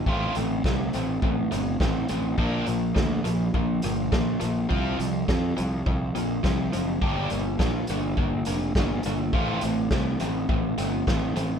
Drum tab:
HH |-x-x-x-x|-x-x-x-x|-x-x-x-x|-x-x-x-x|
SD |--o---o-|--o---o-|--o---o-|--o---o-|
BD |o-o-o-o-|o-o-o-o-|o-o-o-o-|o-o-o-o-|

HH |-x-x-x-x|
SD |--o---o-|
BD |o-o-o-o-|